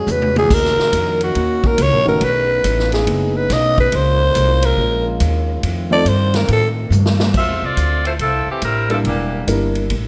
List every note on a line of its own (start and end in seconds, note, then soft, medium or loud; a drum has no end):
0.00 0.48 D3 medium
0.00 0.49 G#3 medium
0.00 0.49 C#4 medium
0.00 2.18 F#4 medium
0.00 0.13 G#4 medium
0.07 0.49 E2 medium
0.07 hi-hat pedal medium
0.07 high tom soft
0.12 0.38 B4 medium
0.22 high tom medium
0.36 0.55 G#4 loud
0.36 high tom medium
0.50 0.76 D#2 medium
0.50 2.20 D#3 medium
0.50 2.20 A#3 medium
0.50 2.20 C#4 medium
0.50 1.23 A#4 medium
0.50 kick medium
0.50 crash medium
0.65 snare soft
0.77 muted upright bass stroke soft
0.77 snare soft
0.92 1.34 F2 medium
0.92 kick soft
0.92 hi-hat pedal soft
0.92 ride medium
1.21 1.68 F#4 medium
1.21 ride soft
1.35 1.77 D#2 medium
1.35 kick soft
1.35 ride medium
1.64 1.84 A#4 medium
1.64 kick medium
1.78 1.92 C#2 medium
1.78 kick soft
1.78 hi-hat pedal soft
1.78 ride medium
1.82 2.08 C#5 loud
1.92 2.05 A#1 medium
2.05 2.20 F#1 medium
2.05 2.20 D#3 medium
2.05 2.20 A3 soft
2.05 2.20 B3 soft
2.05 2.20 C#4 medium
2.05 2.20 F#4 medium
2.05 2.26 A#4 medium
2.21 2.63 B1 medium
2.21 3.90 A3 medium
2.21 3.91 B3 medium
2.21 5.60 C#4 medium
2.21 3.91 D#4 medium
2.21 2.93 B4 medium
2.21 kick soft
2.21 ride medium
2.64 3.06 A1 medium
2.64 kick soft
2.64 hi-hat pedal soft
2.64 ride medium
2.79 snare soft
2.92 3.38 G#4 medium
2.92 snare soft
2.92 ride soft
3.07 3.49 F#1 medium
3.07 kick soft
3.07 ride medium
3.37 3.54 B4 medium
3.50 3.91 B1 medium
3.50 3.79 D#5 medium
3.50 kick soft
3.50 snare soft
3.50 hi-hat pedal medium
3.50 ride medium
3.78 3.97 B4 medium
3.78 kick medium
3.92 4.34 C#2 medium
3.92 5.62 G#3 medium
3.92 5.62 A#3 medium
3.92 7.31 F4 medium
3.92 4.67 C5 loud
3.92 kick soft
3.92 ride medium
4.35 4.77 C2 medium
4.35 kick soft
4.35 hi-hat pedal medium
4.35 ride medium
4.62 5.07 A#4 medium
4.62 ride medium
4.77 5.19 A#1 medium
4.77 kick soft
5.20 5.62 D#2 medium
5.20 kick soft
5.20 hi-hat pedal medium
5.20 ride medium
5.63 6.05 F2 medium
5.63 7.33 D#3 medium
5.63 7.33 A3 medium
5.63 7.33 C4 medium
5.63 kick soft
5.63 ride medium
5.91 6.04 F3 medium
5.91 6.04 A3 medium
5.91 6.05 C4 medium
5.91 6.05 D#4 medium
5.91 6.05 A4 medium
5.91 6.10 D5 medium
6.05 6.47 G2 medium
6.05 6.38 C5 medium
6.05 kick soft
6.05 hi-hat pedal medium
6.05 ride medium
6.34 6.50 A#4 medium
6.34 snare medium
6.34 ride soft
6.48 6.90 A2 medium
6.48 kick soft
6.48 ride medium
6.52 6.68 A4 medium
6.90 7.32 G2 medium
6.90 hi-hat pedal medium
6.90 high tom soft
7.06 snare medium
7.20 snare medium
7.34 7.47 F2 medium
7.34 7.61 C4 medium
7.34 7.62 F4 medium
7.34 7.62 A4 medium
7.34 7.62 E5 medium
7.34 kick medium
7.34 crash medium
7.47 7.61 E2 medium
7.62 7.75 C2 medium
7.62 8.06 C4 medium
7.62 8.05 F4 medium
7.62 8.05 A4 medium
7.62 8.06 D5 medium
7.77 8.18 D2 medium
7.77 kick soft
7.77 hi-hat pedal medium
7.77 ride medium
8.05 8.12 A3 medium
8.05 8.12 E4 medium
8.05 8.13 F4 medium
8.05 8.12 C5 medium
8.05 ride soft
8.19 8.46 C2 medium
8.19 8.46 F3 medium
8.19 8.46 C4 medium
8.19 8.46 E4 medium
8.19 8.46 A4 medium
8.19 kick soft
8.19 ride medium
8.47 8.64 E3 medium
8.47 8.64 A3 medium
8.47 8.63 C4 medium
8.47 8.64 G4 medium
8.47 muted upright bass stroke soft
8.62 9.04 A1 medium
8.62 8.89 G3 medium
8.62 8.89 C4 medium
8.62 8.89 E4 medium
8.62 8.89 A#4 medium
8.62 kick soft
8.62 hi-hat pedal soft
8.62 ride medium
8.89 8.98 F3 medium
8.89 9.44 G3 soft
8.89 9.45 A#3 soft
8.89 8.98 C4 medium
8.89 9.45 D4 soft
8.89 9.45 E4 soft
8.89 8.98 E4 medium
8.89 8.98 A4 medium
8.89 9.45 A#4 medium
8.89 ride soft
9.04 9.46 E1 medium
9.04 9.46 E3 medium
9.04 9.46 A#3 medium
9.04 9.46 D4 medium
9.04 9.46 G4 medium
9.04 kick soft
9.04 ride medium
9.47 9.89 G1 medium
9.47 9.90 G3 medium
9.47 9.91 A#3 medium
9.47 9.90 D4 soft
9.47 9.91 E4 medium
9.47 9.91 A#4 medium
9.47 kick soft
9.47 hi-hat pedal medium
9.47 ride medium
9.75 ride soft
9.90 10.08 A1 medium
9.90 kick soft
9.90 ride medium